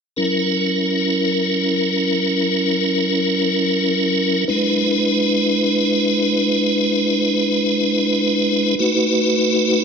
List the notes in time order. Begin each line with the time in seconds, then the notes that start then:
0.17 F#3 C#4 E4 A#4
4.48 G#3 D4 E4 B4
8.79 A3 D#4 F#4 B4